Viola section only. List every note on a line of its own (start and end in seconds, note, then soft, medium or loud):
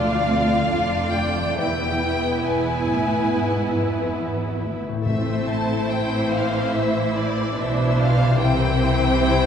0.00 0.69 A3 soft
0.00 0.28 D4 soft
0.28 0.71 C4 soft
0.70 1.56 A3 soft
0.70 1.12 D4 soft
1.13 1.57 D4 soft
1.58 4.86 B3 soft
1.58 4.86 E4 soft
5.06 5.87 A3 soft
5.06 5.86 C4 soft
5.91 7.54 E3 soft
5.91 6.73 C4 soft
6.75 7.58 E4 soft
7.57 9.46 E3 medium
7.57 8.40 D4 medium
8.40 8.80 C4 medium
8.82 9.22 C4 medium
9.23 9.46 E4 medium